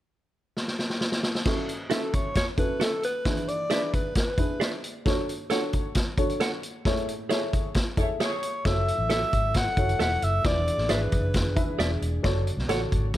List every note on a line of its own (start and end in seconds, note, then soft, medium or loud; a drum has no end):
0.57 snare medium
0.68 snare soft
0.79 snare medium
0.90 snare medium
1.01 snare medium
1.12 snare medium
1.23 snare medium
1.35 snare medium
1.45 1.70 C#4 medium
1.45 1.70 E4 medium
1.45 1.70 F#4 medium
1.45 1.70 A4 medium
1.45 kick loud
1.45 snare loud
1.45 crash medium
1.69 closed hi-hat medium
1.90 2.26 C#4 medium
1.90 2.26 E4 medium
1.90 2.01 F#4 medium
1.90 2.26 F#4 medium
1.90 2.26 A4 medium
1.90 2.01 A4 medium
1.90 2.16 A4 medium
1.90 2.01 E5 medium
1.90 snare medium
1.90 closed hi-hat medium
2.13 2.36 C#5 medium
2.13 kick medium
2.13 closed hi-hat medium
2.35 2.47 C#5 medium
2.35 kick medium
2.35 snare loud
2.35 closed hi-hat medium
2.57 2.93 C#4 medium
2.57 2.93 E4 soft
2.57 2.93 F#4 medium
2.57 2.93 A4 medium
2.57 2.84 B4 medium
2.57 kick medium
2.57 closed hi-hat medium
2.80 2.91 F#4 medium
2.80 2.91 A4 medium
2.80 3.04 A4 medium
2.80 2.91 E5 medium
2.80 snare loud
2.80 closed hi-hat medium
3.03 3.50 B4 medium
3.03 closed hi-hat medium
3.25 3.89 E3 medium
3.25 3.49 D4 medium
3.25 3.49 E4 medium
3.25 3.49 G#4 medium
3.25 3.49 B4 medium
3.25 kick loud
3.25 snare loud
3.25 closed hi-hat medium
3.37 closed hi-hat soft
3.48 3.93 D5 medium
3.48 closed hi-hat medium
3.70 4.06 D4 medium
3.70 4.06 E4 medium
3.70 3.81 G#4 medium
3.70 4.06 G#4 medium
3.70 4.06 B4 medium
3.70 3.81 D5 medium
3.70 3.81 E5 medium
3.70 snare loud
3.70 closed hi-hat medium
3.93 4.15 B4 medium
3.93 kick medium
3.93 closed hi-hat medium
4.15 4.80 B4 medium
4.15 kick medium
4.15 snare loud
4.15 closed hi-hat medium
4.38 4.74 D4 medium
4.38 4.74 E4 medium
4.38 4.74 G#4 soft
4.38 4.74 B4 medium
4.38 kick medium
4.38 closed hi-hat medium
4.60 4.71 G#4 medium
4.60 4.71 D5 medium
4.60 4.71 E5 medium
4.60 snare loud
4.60 closed hi-hat medium
4.84 closed hi-hat medium
5.05 5.29 D4 medium
5.05 5.29 F#4 medium
5.05 5.29 A4 medium
5.05 5.30 C#5 medium
5.05 kick loud
5.05 snare medium
5.05 closed hi-hat medium
5.29 closed hi-hat medium
5.50 5.86 D4 medium
5.50 5.86 F#4 medium
5.50 5.60 A4 medium
5.50 5.86 A4 medium
5.50 5.86 C#5 medium
5.50 5.61 C#5 loud
5.50 5.61 F#5 medium
5.50 snare loud
5.50 closed hi-hat medium
5.73 kick medium
5.73 closed hi-hat medium
5.95 kick medium
5.95 snare loud
5.95 closed hi-hat medium
6.18 6.53 D4 medium
6.18 6.54 F#4 medium
6.18 6.54 A4 medium
6.18 6.54 C#5 medium
6.18 kick medium
6.18 closed hi-hat medium
6.30 closed hi-hat soft
6.40 6.51 A4 medium
6.40 6.51 C#5 medium
6.40 6.51 F#5 medium
6.40 snare loud
6.40 closed hi-hat medium
6.63 closed hi-hat medium
6.85 7.49 A2 medium
6.85 7.09 E4 medium
6.85 7.09 G#4 medium
6.85 7.09 A4 medium
6.85 7.09 C#5 medium
6.85 kick medium
6.85 snare medium
6.85 closed hi-hat medium
6.97 closed hi-hat soft
7.09 closed hi-hat medium
7.29 7.66 E4 medium
7.29 7.40 G#4 medium
7.29 7.66 G#4 medium
7.29 7.66 A4 medium
7.29 7.40 C#5 medium
7.29 7.66 C#5 medium
7.29 7.41 E5 medium
7.29 snare loud
7.29 closed hi-hat medium
7.53 kick medium
7.53 closed hi-hat medium
7.74 kick medium
7.74 snare loud
7.74 closed hi-hat medium
7.97 8.08 A3 medium
7.97 8.33 E4 medium
7.97 8.33 G#4 medium
7.97 8.08 G#4 medium
7.97 8.33 A4 medium
7.97 8.08 C#5 medium
7.97 8.03 D5 medium
7.97 kick medium
7.97 closed hi-hat medium
8.03 8.36 E5 medium
8.20 8.52 A3 medium
8.20 8.30 G#4 medium
8.20 8.52 G#4 loud
8.20 8.52 C#5 medium
8.20 8.31 C#5 medium
8.20 8.68 C#5 medium
8.20 8.31 E5 medium
8.20 snare loud
8.20 closed hi-hat medium
8.43 closed hi-hat medium
8.65 8.89 F#1 medium
8.65 10.43 F#3 medium
8.65 8.89 E4 medium
8.65 10.43 E4 medium
8.65 8.89 F#4 medium
8.65 10.43 A4 medium
8.65 8.89 A4 medium
8.65 8.89 C#5 medium
8.65 9.11 E5 medium
8.65 kick loud
8.65 snare medium
8.65 closed hi-hat medium
8.88 closed hi-hat medium
8.98 9.23 A1 medium
9.09 9.45 E4 medium
9.09 9.45 F#4 medium
9.09 9.20 A4 medium
9.09 9.46 A4 medium
9.09 9.20 C#5 medium
9.09 9.45 E5 medium
9.09 9.21 E5 medium
9.09 9.58 E5 loud
9.09 snare loud
9.09 closed hi-hat medium
9.33 9.65 G#1 medium
9.33 kick medium
9.33 closed hi-hat medium
9.54 10.01 F#5 medium
9.54 kick medium
9.54 snare loud
9.54 closed hi-hat medium
9.77 9.93 F#1 medium
9.77 10.13 E4 medium
9.77 10.13 F#4 medium
9.77 10.13 A4 medium
9.77 10.13 C#5 medium
9.77 kick medium
9.77 closed hi-hat medium
9.89 closed hi-hat soft
9.99 10.16 E1 medium
9.99 10.10 A4 medium
9.99 10.10 C#5 medium
9.99 10.11 E5 medium
9.99 10.25 F#5 loud
9.99 snare loud
9.99 closed hi-hat medium
10.22 10.39 F#1 loud
10.22 10.48 E5 loud
10.22 closed hi-hat medium
10.44 10.69 E1 medium
10.44 11.08 E3 medium
10.44 12.23 E3 medium
10.44 12.23 D4 medium
10.44 10.68 E4 medium
10.44 10.68 G#4 medium
10.44 12.23 G#4 medium
10.44 10.69 B4 medium
10.44 10.69 D5 medium
10.44 10.93 D5 medium
10.44 kick loud
10.44 snare loud
10.44 closed hi-hat medium
10.68 closed hi-hat medium
10.78 10.86 A1 medium
10.78 snare soft
10.89 11.06 G#1 medium
10.89 11.25 E4 medium
10.89 11.00 G#4 medium
10.89 11.25 G#4 medium
10.89 11.25 B4 medium
10.89 11.80 B4 medium
10.89 11.25 D5 medium
10.89 11.00 D5 medium
10.89 11.00 E5 medium
10.89 snare medium
10.89 closed hi-hat medium
11.12 11.57 F#1 medium
11.12 kick medium
11.12 closed hi-hat medium
11.34 kick medium
11.34 snare loud
11.34 closed hi-hat medium
11.56 11.73 E1 medium
11.56 11.92 E4 medium
11.56 11.92 G#4 medium
11.56 11.92 B4 medium
11.56 11.92 E5 medium
11.56 kick medium
11.56 closed hi-hat medium
11.79 11.95 E1 medium
11.79 11.89 G#4 medium
11.79 11.90 D5 medium
11.79 11.90 E5 medium
11.79 snare loud
11.79 closed hi-hat medium
12.01 12.18 E1 medium
12.01 closed hi-hat medium
12.23 12.48 F#1 loud
12.23 13.17 C#3 medium
12.23 13.17 D3 medium
12.23 12.47 F#4 medium
12.23 13.17 F#4 medium
12.23 12.47 A4 medium
12.23 12.48 C#5 medium
12.23 12.48 D5 medium
12.23 kick loud
12.23 snare medium
12.23 closed hi-hat medium
12.47 closed hi-hat medium
12.57 12.66 B1 medium
12.57 snare soft
12.68 12.85 A1 medium
12.68 13.04 F#4 medium
12.68 13.04 A4 medium
12.68 12.79 A4 medium
12.68 13.05 C#5 medium
12.68 12.80 C#5 medium
12.68 13.04 D5 medium
12.68 12.80 F#5 medium
12.68 snare loud
12.68 closed hi-hat loud
12.92 13.17 G#1 medium
12.92 kick medium
12.92 closed hi-hat medium
13.14 closed hi-hat medium